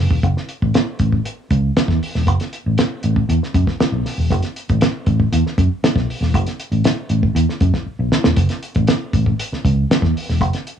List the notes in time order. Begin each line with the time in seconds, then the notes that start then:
0.11 E1, kick
0.23 F#1, kick, closed hi-hat
0.37 snare
0.49 closed hi-hat
0.62 A1, kick
0.74 snare, closed hi-hat
0.99 A1, kick, closed hi-hat
1.12 kick
1.25 closed hi-hat
1.50 C#2, kick, closed hi-hat
1.77 snare, closed hi-hat
1.88 E2, kick, snare
2.03 open hi-hat
2.15 E1, snare
2.27 F#1, kick, closed hi-hat
2.40 snare, closed hi-hat
2.53 closed hi-hat
2.66 A1
2.78 snare, closed hi-hat
3.03 A1, closed hi-hat
3.16 kick
3.29 E2, closed hi-hat
3.43 snare
3.54 F#2, kick, closed hi-hat
3.67 kick, snare
3.80 muted fingered electric bass stroke, snare, closed hi-hat
3.92 B1
4.06 snare, open hi-hat
4.18 E1
4.31 F#1, kick, closed hi-hat
4.43 snare, closed hi-hat
4.56 closed hi-hat
4.69 A1, kick, closed hi-hat
4.81 snare, closed hi-hat
5.06 A1, kick, closed hi-hat
5.20 kick
5.32 E2, closed hi-hat
5.46 snare
5.58 F#2, kick, closed hi-hat
5.83 muted fingered electric bass stroke, snare, closed hi-hat
5.96 B1, kick, snare
6.10 open hi-hat
6.21 E1, snare
6.34 F#1, kick, closed hi-hat
6.46 snare, closed hi-hat
6.59 closed hi-hat
6.72 A1, closed hi-hat
6.84 snare, closed hi-hat
7.09 A1, closed hi-hat
7.23 kick
7.35 E2, closed hi-hat
7.49 snare
7.60 F#2, kick, closed hi-hat
7.74 kick, snare
7.86 muted fingered electric bass stroke
7.99 B1
8.12 snare
8.24 E1, snare
8.36 F#1, kick, closed hi-hat
8.49 snare, closed hi-hat
8.63 closed hi-hat
8.75 A1, kick, closed hi-hat
8.87 snare, closed hi-hat
9.13 A1, kick, closed hi-hat
9.26 kick
9.39 closed hi-hat
9.53 muted fingered electric bass stroke, snare
9.65 C#2, kick, closed hi-hat
9.91 snare, closed hi-hat
10.02 E2, kick, snare
10.17 open hi-hat
10.29 E1, snare
10.41 F#1, kick, closed hi-hat
10.53 snare, closed hi-hat
10.67 closed hi-hat